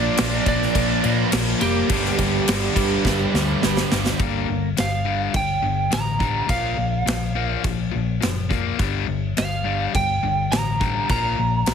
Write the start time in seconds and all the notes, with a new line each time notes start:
Already playing: A#2 F3 A#3 D4 D5
0.16 A#1 A#2 F3 A#3, snare, crash
0.44 A#1 A#2 F3 A#3 D4, kick, crash
0.48 D5
0.62 snare
0.73 A#1 A#2 F3 A#3, kick, crash
1.02 A#2 F3 A#3, crash
1.06 A#2
1.30 A#1 A#2 F3 A#3, snare, crash
1.59 F1 A#2 F3 G3 A#3 G4, crash
1.88 G1 G2 D3 G3, kick, crash
2.05 snare
2.18 G1 G2 D3 G3, kick, crash
2.47 G1 G2 D3 G3, snare, crash
2.75 G1 G2 D3 G3, kick, crash
3.05 G1 G2 D3 G3, kick, snare
3.33 D2 G2 D3 G3, snare
3.62 G1 G2 D3 G3, snare
3.77 snare
3.91 G1 G2 D3 G3, snare
4.06 snare
4.19 G1 G2 D3 G3, kick, crash
4.48 G1 G2 D3
4.77 G1 G2 D3 F5, snare, crash
5.05 G2 D3 G3
5.34 G1 G2 D3 G5, kick, crash
5.62 G1 G2 D3
5.91 A1 G2 D3 A#5, snare, crash
6.19 G2 D3 G3, kick
6.47 A#1 A#2 F3 A#3 F5, kick, crash
6.77 A#1 A#2 F3
7.06 A#1 A#2 F3, snare, crash
7.35 A#2 F3 A#3
7.63 A#1 A#2 F3, kick, crash
7.91 A#1 A#2 F3
8.21 F#1 A#2 F3, snare, crash
8.49 A#2 F3 A#3, kick
8.78 G1 G2 D3 G3, kick, crash
9.07 G1 G2 D3
9.37 G1 G2 D3 F5, snare, crash
9.64 G2 D3 G3
9.94 G1 G2 D3 G5, kick, crash
10.23 G1 G2 D3
10.51 A1 G2 D3 A#5, snare, crash
10.80 G2 D3 G3, kick
11.09 A#1 A#2 F3 A#3 A#5, kick, crash
11.39 A#1 A#2 F3
11.66 A#1 A#2 F3, snare, crash